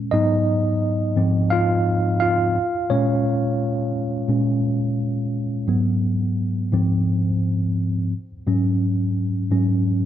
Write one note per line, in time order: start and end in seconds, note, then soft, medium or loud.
0.00 0.14 A#2 soft
0.00 0.14 G#3 soft
0.00 0.14 C#4 soft
0.11 1.12 G#2 medium
0.11 1.13 F#3 soft
0.11 1.13 B3 soft
0.11 1.48 D#4 medium
0.11 1.55 D#5 medium
1.16 2.51 G#2 medium
1.16 2.52 F3 soft
1.16 2.52 C4 medium
1.50 2.17 F4 medium
1.50 2.19 F5 medium
2.20 2.87 F4 medium
2.20 2.92 F5 medium
2.90 3.90 A#2 medium
2.90 3.91 G#3 soft
2.90 3.91 C#4 medium
2.90 3.90 C#5 medium
4.29 4.60 A#2 soft
4.29 4.60 G#3 soft
4.29 4.61 C#4 soft
5.67 6.68 G#2 soft
5.67 6.68 F#3 soft
5.67 6.69 B3 medium
6.73 7.21 G#2 medium
6.73 7.21 F3 soft
6.73 7.22 C4 medium
8.47 9.47 G#2 soft
8.47 9.47 F#3 soft
8.47 9.47 C#4 medium
9.51 9.82 G#2 soft
9.51 9.82 F#3 soft
9.51 9.82 C#4 medium